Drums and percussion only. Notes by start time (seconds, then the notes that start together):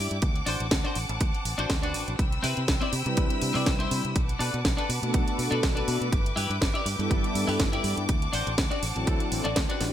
0.11 closed hi-hat
0.22 kick, closed hi-hat
0.36 closed hi-hat
0.47 open hi-hat
0.60 closed hi-hat
0.71 kick, snare, closed hi-hat
0.85 closed hi-hat
0.95 open hi-hat
1.09 closed hi-hat
1.21 kick, closed hi-hat
1.34 closed hi-hat
1.45 open hi-hat
1.59 closed hi-hat
1.70 kick, snare, closed hi-hat
1.83 closed hi-hat
1.94 open hi-hat
2.08 closed hi-hat
2.19 kick, closed hi-hat
2.32 closed hi-hat
2.44 open hi-hat
2.57 closed hi-hat
2.68 kick, snare, closed hi-hat
2.81 closed hi-hat
2.93 open hi-hat
3.06 closed hi-hat
3.17 kick, closed hi-hat
3.30 closed hi-hat
3.42 open hi-hat
3.55 open hi-hat
3.66 kick, snare, closed hi-hat
3.80 closed hi-hat
3.91 open hi-hat
4.05 closed hi-hat
4.16 kick, closed hi-hat
4.29 closed hi-hat
4.41 open hi-hat
4.54 closed hi-hat
4.65 kick, snare, closed hi-hat
4.78 closed hi-hat
4.90 open hi-hat
5.03 closed hi-hat
5.14 kick, closed hi-hat
5.28 closed hi-hat
5.39 open hi-hat
5.52 closed hi-hat
5.63 kick, snare, closed hi-hat
5.77 closed hi-hat
5.88 open hi-hat
6.02 closed hi-hat
6.12 kick, closed hi-hat
6.26 closed hi-hat
6.37 open hi-hat
6.51 closed hi-hat
6.62 kick, snare, closed hi-hat
6.75 closed hi-hat
6.86 open hi-hat
7.00 closed hi-hat
7.11 kick, closed hi-hat
7.24 closed hi-hat
7.35 open hi-hat
7.49 open hi-hat
7.60 kick, snare, closed hi-hat
7.73 closed hi-hat
7.84 open hi-hat
7.97 closed hi-hat
8.09 kick, closed hi-hat
8.22 closed hi-hat
8.33 open hi-hat
8.47 closed hi-hat
8.58 kick, snare, closed hi-hat
8.71 closed hi-hat
8.83 open hi-hat
8.96 closed hi-hat
9.07 kick, closed hi-hat
9.20 closed hi-hat
9.32 open hi-hat
9.45 closed hi-hat
9.56 kick, snare, closed hi-hat
9.70 closed hi-hat
9.81 snare, open hi-hat